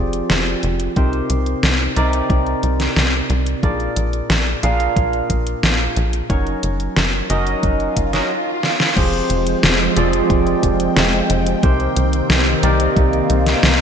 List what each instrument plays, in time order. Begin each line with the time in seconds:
Already playing: analog synth bass F1, tine electric piano F3 C4 F4 G4 G#4 D5
0.13 closed hi-hat
0.30 analog synth bass F1, snare, closed hi-hat
0.46 closed hi-hat
0.63 analog synth bass F1, closed hi-hat
0.80 closed hi-hat
0.96 analog synth bass C2, tine electric piano C3 C4 D#4 G4 A#4 C5, kick, closed hi-hat
1.13 closed hi-hat
1.30 analog synth bass C2, closed hi-hat
1.46 closed hi-hat
1.63 analog synth bass C2, snare, closed hi-hat
1.80 closed hi-hat
1.96 analog synth bass C2, tine electric piano C3 C4 D#4 G4 A#4 D5, closed hi-hat
2.13 closed hi-hat
2.30 analog synth bass C2, kick, closed hi-hat
2.46 closed hi-hat
2.63 analog synth bass C2, closed hi-hat
2.80 snare, closed hi-hat
2.96 analog synth bass C2, snare, closed hi-hat
3.13 closed hi-hat
3.30 analog synth bass C2, closed hi-hat
3.46 closed hi-hat
3.63 analog synth bass A#1, tine electric piano A#2 D4 F4 G#4 A#4 D5, kick, closed hi-hat
3.80 closed hi-hat
3.96 analog synth bass A#1, closed hi-hat
4.13 closed hi-hat
4.30 analog synth bass A#1, snare, closed hi-hat
4.47 closed hi-hat
4.63 analog synth bass A#1, tine electric piano A#2 D4 F4 G#4 A#4 F5, closed hi-hat
4.80 closed hi-hat
4.96 analog synth bass A#1, kick, closed hi-hat
5.13 closed hi-hat
5.30 analog synth bass A#1, kick, closed hi-hat
5.47 closed hi-hat
5.63 analog synth bass A#1, snare, closed hi-hat
5.80 closed hi-hat
5.96 analog synth bass A#1, closed hi-hat
6.13 closed hi-hat
6.30 analog synth bass F#1, tine electric piano F#3 C#4 D#4 F#4 A#4 C#5, kick, closed hi-hat
6.47 closed hi-hat
6.63 analog synth bass F#1, closed hi-hat
6.80 closed hi-hat
6.96 analog synth bass F#1, snare, closed hi-hat
7.13 closed hi-hat
7.30 analog synth bass F#1, tine electric piano F#3 C#4 D#4 F#4 A#4 D#5, closed hi-hat
7.47 closed hi-hat
7.63 analog synth bass F#1, kick, closed hi-hat, swell
7.80 closed hi-hat
7.97 analog synth bass F#1, kick, closed hi-hat
8.13 tine electric piano F#3 C#4 D#4 F#4 A#4 D#5, snare, closed hi-hat
8.63 snare
8.80 snare
8.97 analog synth bass F1, tine electric piano F3 C4 F4 G4 G#4 C5, analog synth pad F3 G#3 C4 G5, kick, closed hi-hat, crash
9.13 closed hi-hat
9.30 analog synth bass F1, closed hi-hat
9.47 closed hi-hat
9.63 analog synth bass F1, snare, closed hi-hat
9.80 closed hi-hat
9.97 analog synth bass F1, tine electric piano F3 C4 F4 G4 G#4 D5, closed hi-hat
10.13 closed hi-hat
10.30 analog synth bass F1, kick, closed hi-hat
10.47 closed hi-hat
10.63 analog synth bass F1, kick, closed hi-hat
10.80 closed hi-hat
10.96 analog synth bass F1, snare, closed hi-hat
11.13 closed hi-hat
11.30 analog synth bass F1, closed hi-hat
11.47 closed hi-hat
11.63 analog synth bass C2, tine electric piano C3 C4 D#4 G4 A#4 C5, analog synth pad D#3 A#3 C4, kick, closed hi-hat
11.80 closed hi-hat
11.96 analog synth bass C2, closed hi-hat
12.13 closed hi-hat
12.30 analog synth bass C2, snare, closed hi-hat
12.47 closed hi-hat
12.63 analog synth bass C2, tine electric piano C3 C4 D#4 G4 A#4 D5, closed hi-hat
12.80 closed hi-hat
12.96 analog synth bass C2, kick, closed hi-hat
13.13 closed hi-hat
13.30 analog synth bass C2, closed hi-hat
13.46 snare, closed hi-hat
13.63 analog synth bass C2, snare, closed hi-hat